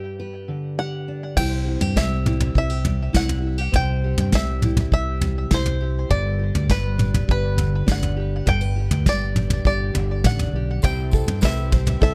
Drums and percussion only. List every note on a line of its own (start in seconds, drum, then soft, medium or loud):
1.37 kick soft
1.37 floor tom medium
1.37 crash medium
1.81 floor tom medium
1.96 kick soft
1.96 snare medium
2.26 mid tom medium
2.40 floor tom medium
2.40 mid tom medium
2.55 kick soft
2.85 floor tom medium
3.14 kick soft
3.14 snare medium
3.29 floor tom medium
3.74 kick soft
3.74 floor tom medium
4.18 floor tom medium
4.32 kick soft
4.32 snare medium
4.62 mid tom medium
4.77 floor tom medium
4.77 mid tom medium
4.92 kick medium
5.21 floor tom medium
5.51 kick medium
5.51 snare medium
5.66 floor tom medium
6.11 kick medium
6.11 floor tom medium
6.55 floor tom medium
6.70 kick medium
6.70 snare medium
6.99 mid tom medium
7.14 floor tom medium
7.14 mid tom medium
7.29 kick medium
7.58 floor tom medium
7.88 kick medium
7.88 snare medium
8.03 floor tom medium
8.47 kick medium
8.47 floor tom medium
8.91 floor tom medium
9.06 kick medium
9.06 snare medium
9.36 mid tom medium
9.50 floor tom medium
9.50 mid tom medium
9.65 kick medium
9.95 floor tom medium
10.24 kick medium
10.24 snare medium
10.24 mid tom medium
10.39 floor tom medium
10.82 kick medium
10.82 floor tom medium
10.82 tambourine medium
11.11 kick medium
11.11 tambourine medium
11.28 floor tom medium
11.41 kick medium
11.41 snare medium
11.41 clap medium
11.41 tambourine medium
11.72 kick medium
11.72 mid tom medium
11.87 floor tom medium
11.87 mid tom medium
12.01 kick medium
12.01 tambourine soft